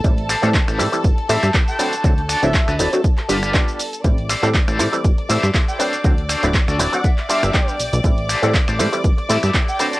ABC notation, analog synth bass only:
X:1
M:4/4
L:1/16
Q:"Swing 16ths" 1/4=120
K:Am
V:1 name="Analog synth bass" clef=bass
z3 A,, z A,,, A,, z G,,, z A,, G,, z4 | D,,2 z D,,, z D,, D,,, z3 G,,,2 z4 | A,,,2 z A,, z A,,, A,, z G,,, z A,, G,, z4 | D,,2 z D,,, z D,, D,,, z4 G,,, z2 B,,, B,,, |
A,,,2 z A,, z A,,, A,, z G,,, z A,, G,, z4 |]